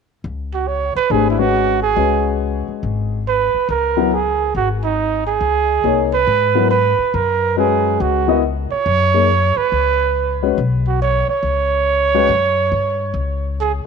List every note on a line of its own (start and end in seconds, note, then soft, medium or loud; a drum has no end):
0.24 0.92 C#2 medium
0.54 0.69 F#4 medium
0.68 0.96 C#5 medium
0.95 1.13 B4 medium
0.95 muted upright bass stroke soft
1.10 1.93 G#1 medium
1.10 1.36 A3 soft
1.10 1.36 D4 soft
1.10 1.36 G4 soft
1.10 1.30 G#4 medium
1.10 1.36 C5 soft
1.30 1.41 E4 medium
1.38 1.76 G#3 soft
1.38 1.76 C#4 soft
1.38 1.76 F#4 soft
1.38 1.82 F#4 medium
1.38 1.76 B4 soft
1.82 2.36 G#4 medium
1.96 2.64 C#2 medium
1.96 3.17 G#3 soft
1.96 3.17 C#4 soft
1.96 3.17 F#4 soft
1.96 3.17 B4 soft
2.68 muted upright bass stroke soft
2.83 3.50 G#1 medium
3.28 3.67 B4 medium
3.54 muted upright bass stroke soft
3.69 4.51 C#2 medium
3.69 4.15 A#4 medium
3.97 4.10 F#3 medium
3.97 4.10 B3 medium
3.97 4.11 E4 medium
3.97 4.11 A#4 medium
4.14 4.56 G#4 medium
4.55 5.37 G#1 medium
4.55 4.69 F#4 medium
4.84 5.24 D#4 medium
5.27 6.09 G#4 medium
5.41 5.81 C#2 medium
5.84 6.24 C2 medium
5.84 6.10 A#3 soft
5.84 6.10 D#4 soft
5.84 6.10 G#4 soft
5.84 6.10 C#5 medium
6.14 6.67 B4 loud
6.27 6.95 G#2 medium
6.55 6.69 F#3 soft
6.55 6.69 B3 soft
6.55 6.69 E4 soft
6.55 6.69 A#4 medium
6.71 7.16 B4 medium
6.99 muted upright bass stroke soft
7.14 7.96 F#2 medium
7.14 7.57 A#4 medium
7.57 8.22 G#3 medium
7.57 8.23 C#4 soft
7.57 8.23 F#4 soft
7.57 8.03 G#4 medium
7.57 8.23 B4 medium
8.00 8.67 C#2 medium
8.00 8.40 F#4 medium
8.28 8.41 B3 medium
8.28 8.41 E4 medium
8.28 8.42 A#4 medium
8.28 8.42 D#5 medium
8.72 9.59 C#5 medium
8.72 muted upright bass stroke soft
8.86 9.53 F#2 medium
9.14 9.27 A#3 soft
9.14 9.27 D#4 soft
9.14 9.28 G#4 soft
9.14 9.28 C#5 medium
9.56 10.43 B4 medium
9.56 muted upright bass stroke soft
9.72 10.54 C#2 medium
10.42 10.56 G#3 soft
10.42 10.56 C#4 medium
10.42 10.56 F#4 soft
10.42 10.56 B4 medium
10.58 11.25 B1 medium
10.87 11.00 F#4 medium
11.02 11.27 C#5 medium
11.28 13.54 C#5 loud
11.28 muted upright bass stroke soft
11.43 12.25 C#2 medium
12.14 12.28 G#3 medium
12.14 12.28 C#4 medium
12.14 12.28 F#4 medium
12.14 12.28 B4 medium
12.29 12.69 F#2 medium
12.72 13.12 G2 medium
13.14 13.81 C#2 medium
13.60 13.72 G#4 medium